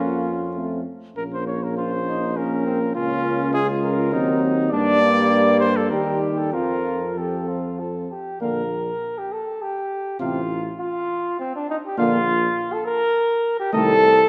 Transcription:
Already playing: F2 A#3 C#4 F4
0.55 A3 C4
1.16 A#1 A#3 C#4 A#4
1.34 C5
1.48 C#5
1.64 A#4
1.77 F4 C5
2.07 D#4
2.36 A#3 C#4 A#4
2.65 C4
2.95 C#2 A#3 C#4 F4
3.54 G#3 F4 G#4
3.84 A#4
4.13 D#2 F#3 C4 D#4
4.71 G2 G3 A#3 D4 D5
5.02 A#3
5.60 C5
5.76 A4
5.90 D#2 G3 D#4 G4 A#4
6.22 G4
6.38 A4
6.53 F2 F3 C4 F4 A#4
7.16 F3 C4 G4 A4
7.48 F4
7.79 A4
8.11 G4
8.41 A#1 D3 A#3 A#4 F5
9.18 G4
9.32 A4
9.62 G4
10.20 A1 C3 C4 F4 F5
10.80 F4
11.39 C4
11.55 D4
11.70 D#4
11.86 G4
11.98 A#1 D3 A#3 F4 F5
12.72 A4
12.86 A#4
13.60 G4
13.73 C2 D#3 A3 A4 D#5

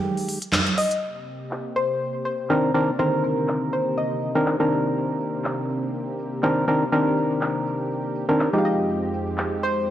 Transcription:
Already playing: D#3 G#3 G4
0.17 open hi-hat
0.29 open hi-hat
0.42 closed hi-hat
0.52 clap, high conga
0.67 closed hi-hat
0.78 D#5, open hi-hat
0.91 closed hi-hat
1.02 C3 A#3 C4 G4, crash
1.27 tambourine
1.51 clap, tambourine
1.76 C5
2.01 tambourine
2.14 tambourine
2.25 C5
2.39 tambourine
2.49 D#3 C4 D4 A#4, clap
2.74 D#3 C4 D4 A#4 D5
2.88 tambourine
2.99 D3 D#3 C4 A#4 C5
3.13 tambourine
3.24 A#4, tambourine
3.37 tambourine
3.48 clap, tambourine
3.73 C5, tambourine
3.86 tambourine
3.98 D#5
4.11 tambourine
4.22 tambourine
4.35 D#3 C4 D4 A#4
4.46 clap, tambourine
4.60 D#3 C4 D4 A#4, tambourine
4.71 tambourine
4.85 tambourine
4.96 tambourine
5.09 tambourine
5.20 tambourine
5.34 tambourine
5.44 clap, tambourine
5.70 tambourine
5.83 tambourine
5.94 tambourine
6.08 tambourine
6.19 tambourine
6.32 tambourine
6.43 D#3 C4 D4 A#4, clap
6.68 D#3 C4 D4 A#4, tambourine
6.81 tambourine
6.92 D#3 C4 D4 A#4, tambourine
7.06 tambourine
7.17 tambourine
7.31 tambourine
7.41 clap, tambourine
7.66 tambourine
7.80 tambourine
7.91 tambourine
8.04 tambourine
8.15 tambourine
8.29 D#3 C4 D4 A#4, tambourine
8.39 clap, tambourine
8.53 F3 G#3 D#4 G4, tambourine
8.58 F5
8.65 F2 G#3 C4 D#5, tambourine
8.78 tambourine
8.89 tambourine
9.03 tambourine
9.14 tambourine
9.27 tambourine
9.38 clap, tambourine
9.63 C5, tambourine
9.76 tambourine

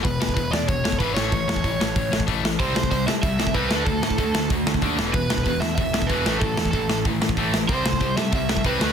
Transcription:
0.04 E1 E2 B2 B4, kick, open hi-hat
0.20 E1 E2 B2, snare
0.29 kick
0.34 E1 E2 B2 B4, kick, open hi-hat
0.51 E2 B2 D5, snare
0.67 E1 E2 B2 C#5, kick, open hi-hat
0.84 E2 B2, snare
0.92 kick
0.99 G#1 E2 B2 E3 B4, kick, open hi-hat
1.14 A1 A2 E3 A3 C#5, snare
1.32 A1 A2 E3, kick, open hi-hat
1.48 E2 A2 E3, snare
1.56 kick
1.64 A1 A2 E3, kick, open hi-hat
1.80 A1 A2 E3, snare
1.96 A1 A2 E3, kick, open hi-hat
2.12 A1 A2 E3, snare
2.20 kick
2.27 A1 A2 E3 A3, kick, open hi-hat
2.43 A2 E3, snare
2.59 C2 C3 G3 C4 C5, kick, open hi-hat
2.75 C2 C3 G3, snare
2.83 kick
2.91 C2 C3 G3 C5, kick, open hi-hat
3.07 C3 G3 E5, snare
3.23 C2 C3 G3 E5, kick, open hi-hat
3.39 C3 G3, snare
3.47 kick
3.54 C2 C3 G3 C4 B4, kick, open hi-hat
3.71 D2 D3 A3 D4, snare
3.85 D2 D3 A3 A4, kick, open hi-hat
4.02 A2 D3 A3, snare
4.10 kick
4.18 D2 D3 A3 A4, kick, open hi-hat
4.34 D2 D3 A3, snare
4.50 D2 D3 A3, kick, open hi-hat
4.66 D2 D3 A3, snare
4.74 kick
4.82 D#2 D3 A3 D4, kick, open hi-hat
4.98 E1 E2 B2 E3, snare
5.14 E1 E2 B2 B4, kick, open hi-hat
5.30 E1 E2 B2, snare
5.38 kick
5.44 E1 E2 B2 B4, kick, open hi-hat
5.60 E2 B2 E5, snare
5.75 E1 E2 B2 E5, kick, open hi-hat
5.93 E2 B2, snare
6.02 kick
6.07 E1 E2 B2 E3 B4, kick, open hi-hat
6.26 A1 A2 E3 A3, snare
6.40 A1 A2 E3 A4, kick, open hi-hat
6.57 E2 A2 E3, snare
6.65 kick
6.71 A1 A2 E3 A4, kick, open hi-hat
6.89 A1 A2 E3, snare
7.05 A1 A2 E3, kick, open hi-hat
7.21 A1 A2 E3, snare
7.29 kick
7.37 A1 A2 E3 A3, kick, open hi-hat
7.54 A2 E3, snare
7.69 C2 C3 G3 C4 C5, kick, open hi-hat
7.84 C2 C3 G3, snare
7.93 kick
8.00 C2 C3 G3 C5, kick, open hi-hat
8.16 C3 G3 E5, snare
8.32 C2 C3 G3 E5, kick, open hi-hat
8.49 C3 G3, snare
8.57 kick
8.64 C2 C3 G3 C4 B4, kick, open hi-hat
8.79 D2 D3 A3 D4, snare

